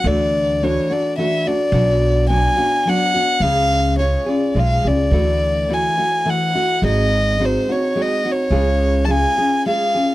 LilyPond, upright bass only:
\new Staff \with { instrumentName = "Upright bass" } { \clef bass \time 3/4 \key d \lydian \tempo 4 = 106 d,2 r4 | b,,2 r4 | cis,2 b,,8 cis,8 | d,2 r4 |
gis,,2 r4 | cis,2 r4 | }